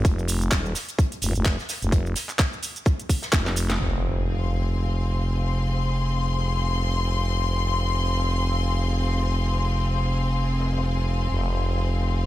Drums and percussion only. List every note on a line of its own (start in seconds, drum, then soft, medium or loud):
0.05 kick loud
0.05 closed hi-hat medium
0.05 shaker soft
0.19 shaker soft
0.28 closed hi-hat medium
0.28 open hi-hat loud
0.28 shaker medium
0.42 closed hi-hat medium
0.42 shaker soft
0.51 kick loud
0.51 snare loud
0.51 clap loud
0.51 closed hi-hat medium
0.51 shaker soft
0.66 shaker soft
0.75 snare medium
0.75 closed hi-hat medium
0.75 open hi-hat medium
0.75 shaker medium
0.89 closed hi-hat medium
0.89 closed hi-hat soft
0.89 shaker soft
0.99 kick loud
0.99 closed hi-hat medium
0.99 shaker soft
1.12 closed hi-hat medium
1.12 closed hi-hat soft
1.12 shaker soft
1.22 closed hi-hat medium
1.22 open hi-hat loud
1.22 shaker medium
1.35 closed hi-hat medium
1.35 shaker soft
1.45 kick loud
1.45 snare loud
1.45 clap loud
1.45 closed hi-hat medium
1.45 shaker soft
1.59 snare soft
1.59 shaker soft
1.69 snare medium
1.69 closed hi-hat medium
1.69 open hi-hat medium
1.69 shaker medium
1.82 closed hi-hat medium
1.82 shaker soft
1.92 kick loud
1.92 closed hi-hat medium
1.92 shaker soft
2.06 shaker soft
2.16 snare soft
2.16 closed hi-hat medium
2.16 open hi-hat loud
2.16 shaker medium
2.29 clap soft
2.29 closed hi-hat medium
2.29 shaker soft
2.39 kick loud
2.39 snare loud
2.39 clap loud
2.39 closed hi-hat medium
2.39 shaker soft
2.53 shaker soft
2.63 closed hi-hat medium
2.63 open hi-hat medium
2.63 shaker medium
2.76 closed hi-hat medium
2.76 shaker soft
2.85 kick loud
2.85 closed hi-hat medium
2.85 shaker soft
3.00 closed hi-hat medium
3.00 shaker soft
3.09 kick medium
3.09 closed hi-hat medium
3.09 open hi-hat loud
3.09 shaker medium
3.22 snare medium
3.22 closed hi-hat medium
3.22 shaker soft
3.33 kick loud
3.33 snare medium
3.33 snare loud
3.33 clap loud
3.33 closed hi-hat medium
3.33 shaker soft
3.46 snare medium
3.46 closed hi-hat soft
3.46 shaker soft
3.56 closed hi-hat medium
3.56 open hi-hat medium
3.56 shaker medium
3.70 snare medium
3.70 closed hi-hat medium
3.70 shaker soft
4.50 snare soft
5.34 snare soft
5.43 snare medium
5.91 snare soft
6.98 snare medium
8.25 snare medium
9.09 snare soft
9.20 snare medium
9.66 snare soft
9.89 closed hi-hat medium
10.36 closed hi-hat medium
10.60 snare medium
10.66 snare medium
10.73 snare medium
10.78 snare medium
10.78 closed hi-hat medium
10.83 closed hi-hat medium
12.00 snare medium